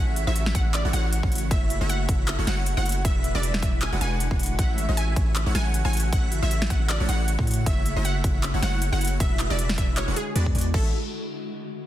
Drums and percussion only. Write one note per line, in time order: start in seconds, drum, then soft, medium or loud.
0.16 closed hi-hat medium
0.36 closed hi-hat medium
0.46 snare medium
0.55 kick loud
0.55 closed hi-hat medium
0.74 clap loud
0.74 closed hi-hat medium
0.93 closed hi-hat medium
1.13 closed hi-hat medium
1.23 kick medium
1.32 closed hi-hat medium
1.35 closed hi-hat medium
1.38 closed hi-hat medium
1.51 kick loud
1.51 closed hi-hat medium
1.70 closed hi-hat medium
1.89 closed hi-hat medium
2.09 kick loud
2.09 closed hi-hat medium
2.28 clap loud
2.28 closed hi-hat medium
2.47 snare medium
2.47 closed hi-hat medium
2.66 closed hi-hat medium
2.86 closed hi-hat medium
2.89 closed hi-hat medium
2.92 closed hi-hat medium
3.05 kick loud
3.05 closed hi-hat medium
3.24 closed hi-hat medium
3.43 closed hi-hat medium
3.54 snare medium
3.63 kick loud
3.63 closed hi-hat medium
3.82 clap loud
3.82 closed hi-hat medium
4.01 closed hi-hat medium
4.20 closed hi-hat medium
4.31 kick medium
4.39 closed hi-hat soft
4.43 closed hi-hat medium
4.46 closed hi-hat medium
4.59 kick loud
4.59 closed hi-hat medium
4.78 closed hi-hat medium
4.97 closed hi-hat medium
5.16 kick loud
5.16 closed hi-hat medium
5.36 clap loud
5.36 closed hi-hat medium
5.55 snare medium
5.55 closed hi-hat medium
5.74 closed hi-hat medium
5.93 closed hi-hat soft
5.97 closed hi-hat medium
6.00 closed hi-hat medium
6.13 kick loud
6.13 closed hi-hat medium
6.32 closed hi-hat medium
6.51 closed hi-hat medium
6.62 snare medium
6.70 kick loud
6.70 closed hi-hat medium
6.90 clap loud
6.90 closed hi-hat medium
7.09 closed hi-hat medium
7.28 closed hi-hat medium
7.39 kick medium
7.47 closed hi-hat soft
7.51 closed hi-hat medium
7.54 closed hi-hat medium
7.66 kick loud
7.66 closed hi-hat medium
7.86 closed hi-hat medium
8.05 closed hi-hat medium
8.24 kick loud
8.24 closed hi-hat medium
8.43 clap loud
8.43 closed hi-hat medium
8.63 snare medium
8.63 closed hi-hat medium
8.82 closed hi-hat medium
9.01 closed hi-hat soft
9.05 closed hi-hat medium
9.07 closed hi-hat medium
9.20 kick loud
9.20 closed hi-hat medium
9.39 clap medium
9.39 closed hi-hat medium
9.59 closed hi-hat medium
9.69 snare medium
9.78 kick loud
9.78 closed hi-hat medium
9.97 clap loud
9.97 closed hi-hat medium
10.16 closed hi-hat medium
10.36 closed hi-hat medium
10.46 kick medium
10.55 closed hi-hat medium
10.58 closed hi-hat medium
10.61 closed hi-hat medium
10.74 kick loud
10.74 crash medium